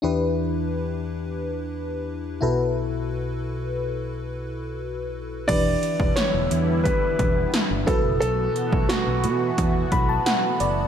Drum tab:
CC |----------------|----------------|x---------------|----------------|
HH |----------------|----------------|x-x-x-x-x-x-x-x-|x-x-x-x-x-x-x-x-|
SD |----------------|----------------|----o-------o---|----o-------o---|
BD |----------------|----------------|o--o----o-o---o-|---o----o-o-----|